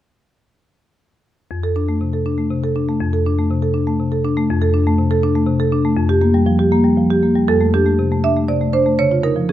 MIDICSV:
0, 0, Header, 1, 2, 480
1, 0, Start_track
1, 0, Key_signature, -1, "major"
1, 0, Tempo, 499584
1, 1446, Time_signature, 3, 2, 24, 8
1, 9150, End_track
2, 0, Start_track
2, 0, Title_t, "Marimba"
2, 0, Program_c, 0, 12
2, 1449, Note_on_c, 0, 41, 48
2, 1571, Note_on_c, 0, 69, 41
2, 1690, Note_on_c, 0, 62, 38
2, 1762, Note_off_c, 0, 69, 0
2, 1811, Note_on_c, 0, 57, 36
2, 1882, Note_off_c, 0, 62, 0
2, 1930, Note_on_c, 0, 48, 31
2, 2002, Note_off_c, 0, 57, 0
2, 2050, Note_on_c, 0, 69, 35
2, 2121, Note_off_c, 0, 48, 0
2, 2171, Note_on_c, 0, 62, 38
2, 2240, Note_off_c, 0, 69, 0
2, 2288, Note_on_c, 0, 57, 36
2, 2360, Note_off_c, 0, 62, 0
2, 2408, Note_on_c, 0, 48, 37
2, 2479, Note_off_c, 0, 57, 0
2, 2532, Note_on_c, 0, 69, 41
2, 2600, Note_off_c, 0, 48, 0
2, 2649, Note_on_c, 0, 62, 40
2, 2722, Note_off_c, 0, 69, 0
2, 2773, Note_on_c, 0, 57, 38
2, 2840, Note_off_c, 0, 62, 0
2, 2850, Note_off_c, 0, 41, 0
2, 2888, Note_on_c, 0, 41, 54
2, 2961, Note_off_c, 0, 57, 0
2, 3009, Note_on_c, 0, 69, 43
2, 3134, Note_on_c, 0, 62, 40
2, 3197, Note_off_c, 0, 69, 0
2, 3253, Note_on_c, 0, 57, 37
2, 3319, Note_off_c, 0, 62, 0
2, 3367, Note_on_c, 0, 48, 38
2, 3438, Note_off_c, 0, 57, 0
2, 3481, Note_on_c, 0, 69, 41
2, 3555, Note_off_c, 0, 48, 0
2, 3594, Note_on_c, 0, 62, 40
2, 3671, Note_off_c, 0, 69, 0
2, 3718, Note_on_c, 0, 57, 39
2, 3787, Note_off_c, 0, 62, 0
2, 3838, Note_on_c, 0, 48, 37
2, 3908, Note_off_c, 0, 57, 0
2, 3956, Note_on_c, 0, 69, 41
2, 4028, Note_off_c, 0, 48, 0
2, 4079, Note_on_c, 0, 62, 48
2, 4147, Note_off_c, 0, 69, 0
2, 4198, Note_on_c, 0, 57, 47
2, 4268, Note_off_c, 0, 62, 0
2, 4275, Note_off_c, 0, 41, 0
2, 4315, Note_off_c, 0, 57, 0
2, 4321, Note_on_c, 0, 41, 63
2, 4436, Note_on_c, 0, 69, 50
2, 4554, Note_on_c, 0, 62, 45
2, 4623, Note_off_c, 0, 69, 0
2, 4676, Note_on_c, 0, 57, 48
2, 4740, Note_off_c, 0, 62, 0
2, 4791, Note_on_c, 0, 48, 39
2, 4860, Note_off_c, 0, 57, 0
2, 4908, Note_on_c, 0, 69, 52
2, 4976, Note_off_c, 0, 48, 0
2, 5028, Note_on_c, 0, 62, 53
2, 5094, Note_off_c, 0, 69, 0
2, 5142, Note_on_c, 0, 57, 44
2, 5213, Note_off_c, 0, 62, 0
2, 5255, Note_on_c, 0, 48, 45
2, 5329, Note_off_c, 0, 57, 0
2, 5378, Note_on_c, 0, 69, 47
2, 5445, Note_off_c, 0, 48, 0
2, 5498, Note_on_c, 0, 62, 52
2, 5567, Note_off_c, 0, 69, 0
2, 5617, Note_on_c, 0, 57, 47
2, 5686, Note_off_c, 0, 62, 0
2, 5698, Note_off_c, 0, 41, 0
2, 5730, Note_on_c, 0, 41, 60
2, 5734, Note_off_c, 0, 57, 0
2, 5853, Note_on_c, 0, 67, 51
2, 5971, Note_on_c, 0, 58, 48
2, 6044, Note_off_c, 0, 67, 0
2, 6093, Note_on_c, 0, 55, 49
2, 6164, Note_off_c, 0, 58, 0
2, 6210, Note_on_c, 0, 53, 45
2, 6287, Note_off_c, 0, 55, 0
2, 6331, Note_on_c, 0, 67, 45
2, 6407, Note_off_c, 0, 53, 0
2, 6455, Note_on_c, 0, 58, 49
2, 6529, Note_off_c, 0, 67, 0
2, 6574, Note_on_c, 0, 55, 40
2, 6653, Note_off_c, 0, 58, 0
2, 6698, Note_on_c, 0, 53, 38
2, 6775, Note_off_c, 0, 55, 0
2, 6826, Note_on_c, 0, 67, 41
2, 6900, Note_off_c, 0, 53, 0
2, 6946, Note_on_c, 0, 58, 41
2, 7027, Note_off_c, 0, 67, 0
2, 7068, Note_on_c, 0, 55, 37
2, 7146, Note_off_c, 0, 58, 0
2, 7158, Note_off_c, 0, 41, 0
2, 7189, Note_on_c, 0, 41, 49
2, 7189, Note_on_c, 0, 69, 63
2, 7194, Note_off_c, 0, 55, 0
2, 7308, Note_on_c, 0, 57, 41
2, 7423, Note_off_c, 0, 69, 0
2, 7436, Note_on_c, 0, 62, 40
2, 7436, Note_on_c, 0, 67, 52
2, 7505, Note_off_c, 0, 57, 0
2, 7554, Note_on_c, 0, 57, 39
2, 7629, Note_off_c, 0, 62, 0
2, 7675, Note_on_c, 0, 48, 37
2, 7749, Note_off_c, 0, 57, 0
2, 7798, Note_on_c, 0, 57, 38
2, 7869, Note_off_c, 0, 48, 0
2, 7898, Note_off_c, 0, 67, 0
2, 7916, Note_on_c, 0, 76, 62
2, 7918, Note_on_c, 0, 62, 40
2, 7990, Note_off_c, 0, 57, 0
2, 8038, Note_on_c, 0, 57, 36
2, 8110, Note_off_c, 0, 62, 0
2, 8147, Note_off_c, 0, 76, 0
2, 8151, Note_on_c, 0, 48, 38
2, 8152, Note_on_c, 0, 74, 49
2, 8229, Note_off_c, 0, 57, 0
2, 8275, Note_on_c, 0, 57, 35
2, 8346, Note_off_c, 0, 48, 0
2, 8384, Note_off_c, 0, 74, 0
2, 8390, Note_on_c, 0, 72, 61
2, 8391, Note_on_c, 0, 62, 43
2, 8468, Note_off_c, 0, 57, 0
2, 8513, Note_on_c, 0, 57, 37
2, 8586, Note_off_c, 0, 62, 0
2, 8594, Note_off_c, 0, 41, 0
2, 8624, Note_off_c, 0, 72, 0
2, 8635, Note_off_c, 0, 57, 0
2, 8635, Note_on_c, 0, 49, 52
2, 8636, Note_on_c, 0, 73, 70
2, 8757, Note_on_c, 0, 65, 40
2, 8867, Note_off_c, 0, 73, 0
2, 8871, Note_on_c, 0, 63, 40
2, 8873, Note_on_c, 0, 70, 61
2, 8949, Note_off_c, 0, 65, 0
2, 8993, Note_on_c, 0, 53, 41
2, 9065, Note_off_c, 0, 63, 0
2, 9104, Note_off_c, 0, 70, 0
2, 9117, Note_on_c, 0, 61, 39
2, 9120, Note_on_c, 0, 68, 54
2, 9150, Note_off_c, 0, 49, 0
2, 9150, Note_off_c, 0, 53, 0
2, 9150, Note_off_c, 0, 61, 0
2, 9150, Note_off_c, 0, 68, 0
2, 9150, End_track
0, 0, End_of_file